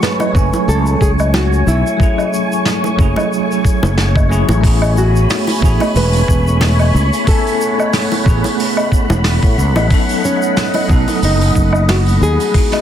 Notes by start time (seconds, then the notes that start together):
Already playing: F#3 A3 C#4 E4 G#4 C#5 G#5 C#6
0.03 B4, snare, shaker
0.20 high bongo, low woodblock, shaker
0.32 F#1 F#3 A3 C#4, kick
0.36 E4 G#5, shaker
0.53 high bongo, shaker
0.68 C#2 A4, shaker
0.86 shaker
1.01 C#2 G#4, kick, shaker
1.19 low woodblock, shaker
1.34 F#4, snare, high bongo, shaker
1.53 shaker
1.67 B1 E4, shaker
1.87 shaker
1.97 F#3 A3 C#4, kick
2.01 E4 G#4, shaker
2.18 low woodblock, shaker
2.34 shaker
2.52 shaker
2.65 snare, shaker
2.84 high bongo, shaker
2.96 F#1 F#3 A3 C#4, kick
3.00 E4 G#4, shaker
3.16 high bongo, low woodblock, shaker
3.33 shaker
3.52 shaker
3.65 kick, shaker
3.83 F#1, high bongo, shaker
3.98 snare, shaker
4.16 kick, low woodblock, shaker
4.29 F#3 A3 C#4 E4 G#4, shaker
4.48 A1, high bongo, shaker
4.61 A3 B3 C#4 C#5 B5, kick, open hi-hat
4.65 E4 G#4, shaker
4.81 open hi-hat, low woodblock, shaker
4.97 F#4, shaker
5.16 shaker
5.30 snare, open hi-hat, shaker
5.47 open hi-hat, high bongo, shaker
5.59 A1 A3 B3 C#4, kick
5.64 E4 G#4, shaker
5.80 open hi-hat, high bongo, low woodblock, shaker
5.95 E1 B4, open hi-hat, shaker
6.13 open hi-hat, shaker
6.28 E1, kick, shaker
6.47 shaker
6.61 snare, open hi-hat, high bongo, shaker
6.79 open hi-hat, low woodblock, shaker
6.94 C#2, shaker
7.13 open hi-hat, shaker
7.24 A3 B3 C#4 F#5, kick, open hi-hat
7.28 E4 A4 G#5, shaker
7.46 open hi-hat, shaker
7.61 shaker
7.80 low woodblock, shaker
7.93 snare, open hi-hat, shaker
8.11 open hi-hat, high bongo, shaker
8.23 A1 A3 B3 C#4, kick
8.27 E4 G#4, shaker
8.44 open hi-hat, high bongo, shaker
8.60 open hi-hat, shaker
8.77 open hi-hat, low woodblock, shaker
8.92 kick, shaker
9.10 E1, high bongo, shaker
9.24 snare, open hi-hat, shaker
9.42 A2, kick, open hi-hat, shaker
9.58 C#2, shaker
9.76 A1, open hi-hat, high bongo, low woodblock, shaker
9.88 F#3 B3 C#4 D#5, kick, open hi-hat
9.92 D#4 A4, shaker
10.09 open hi-hat, shaker
10.25 C#4, shaker
10.42 shaker
10.57 snare, open hi-hat, shaker
10.74 open hi-hat, high bongo, low woodblock, shaker
10.87 B1 F#3 B3 C#4, kick, shaker
10.91 D#4 A4
11.07 open hi-hat, high bongo, shaker
11.22 F#1 D#4, open hi-hat, shaker
11.41 open hi-hat, shaker
11.55 F#1, kick, shaker
11.73 low woodblock, shaker
11.88 F#4, snare, open hi-hat, high bongo, shaker
12.06 open hi-hat, shaker
12.21 D#2 G#4, shaker
12.40 open hi-hat, shaker
12.51 G#3 B3 D#4 G#4 B5, kick, open hi-hat
12.56 E4 F#4, shaker
12.72 snare, open hi-hat, low woodblock, shaker